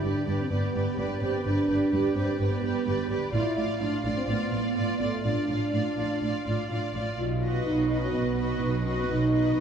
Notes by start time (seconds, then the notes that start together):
Already playing: G2
0.02 G1 G2 D4 G4 B4 D5
0.26 G1 G2 D4 G4 B4 D5
0.39 C4
0.50 G1 G2 B3 G4 B4 D5
0.74 G1 G2 G4 B4 D5
0.97 G1 G2 D4 G4 B4 D5
1.20 G1 G2 C4 G4 B4 D5
1.35 B3
1.45 G1 G2 D4 G4 B4 D5
1.68 G1 G2 G4 B4 D5
1.92 G1 G2 G4 B4 D5
2.15 G1 G2 C4 G4 B4 D5
2.38 G1 G2 B3 G4 B4 D5
2.62 G1 G2 G4 B4 D5
2.85 G1 G2 G4 B4 D5
3.09 G1 G2 G4 B4 D5
3.32 A1 A2 E4 F4 D5 F5
3.56 A1 A2 F4 D5 F5
3.79 A1 A2 D4 F4 D5 F5
4.03 A1 A2 D4 F4 D5 F5
4.17 C4
4.26 A1 A2 B3 F4 D5 F5
4.49 A1 A2 F4 D5 F5
4.75 A1 A2 F4 D5 F5
4.98 A1 A2 A3 F4 D5 F5
5.23 A1 A2 D4 F4 D5 F5
5.47 A1 A2 F4 D5 F5
5.73 A1 A2 F4 D5 F5
5.97 A1 A2 F4 D5 F5
6.21 A1 A2 F4 D5 F5
6.45 A1 A2 F4 D5 F5
6.69 A1 A2 F4 D5 F5
6.93 A1 A2 F4 D5 F5
7.17 B1 B2 F4
7.43 F#4 B4 D#5
7.65 B1 B2 D#4
7.89 D#4 F#4 B4 D#5
8.01 C#4
8.12 B1 B2 B3
8.37 F#4 B4 D#5
8.60 B1 B2 D#4
8.83 C#4 F#4 B4 D#5
8.98 B3
9.08 B1 B2 D#4
9.32 F#4 B4 D#5
9.55 B1 B2